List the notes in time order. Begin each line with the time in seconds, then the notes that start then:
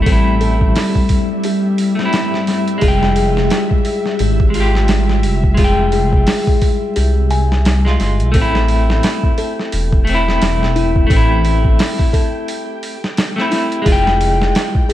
Already playing: G3 E5
0.02 A3
0.06 A1 C4 A4, kick, open hi-hat
0.12 E4
0.41 A4, open hi-hat
0.61 kick
0.76 snare, open hi-hat
0.95 kick
1.09 kick, open hi-hat
1.44 G4, open hi-hat
1.78 open hi-hat
1.95 A3, snare
2.00 C4
2.05 E4
2.13 snare, open hi-hat
2.34 snare
2.47 snare, open hi-hat
2.68 closed hi-hat
2.78 G#3 G#4, open hi-hat
2.82 F1 F4, kick
2.88 G5
3.03 snare
3.16 G#4, open hi-hat
3.37 snare
3.50 snare, open hi-hat
3.71 kick
3.85 open hi-hat
4.06 snare
4.19 G#1 G4, open hi-hat
4.40 kick
4.50 G#3
4.54 F4, open hi-hat
4.60 G4
4.75 snare
4.88 snare, open hi-hat
5.09 snare
5.23 F1, open hi-hat
5.44 kick
5.54 F1 G#3 G#4, kick, open hi-hat
5.59 F4
5.64 G5
5.92 G#4, open hi-hat
6.13 kick
6.27 snare, open hi-hat
6.47 kick
6.62 kick, open hi-hat
6.96 C2 G4, open hi-hat
7.31 G#5, open hi-hat
7.52 snare
7.65 snare, open hi-hat
7.85 G#3 F4, snare
8.00 G1, snare, open hi-hat
8.20 B1, closed hi-hat
8.32 A1 A3 A4, kick, open hi-hat
8.36 C4 G5
8.42 E4
8.55 snare
8.68 open hi-hat
8.90 snare
9.03 snare, open hi-hat
9.23 kick
9.38 A4, open hi-hat
9.59 snare
9.72 E1, open hi-hat
9.92 kick
10.05 A3, open hi-hat
10.09 C4
10.15 E4
10.29 snare
10.42 E1, snare, open hi-hat
10.63 snare
10.76 E4, open hi-hat
10.96 kick
11.07 A1 A3 A4, kick
11.11 C4, open hi-hat
11.16 E4
11.45 open hi-hat
11.65 kick
11.79 snare, open hi-hat
11.99 kick
12.13 A4, kick, open hi-hat
12.48 open hi-hat
12.83 open hi-hat
13.04 snare
13.17 snare, open hi-hat
13.36 A3 C4, snare
13.41 E4
13.51 E4, snare, open hi-hat
13.72 closed hi-hat
13.82 G#3 G#4
13.86 F1 F4, kick, open hi-hat
13.92 G5
14.07 snare
14.21 open hi-hat
14.42 snare
14.55 snare, open hi-hat
14.75 kick
14.89 G#4, open hi-hat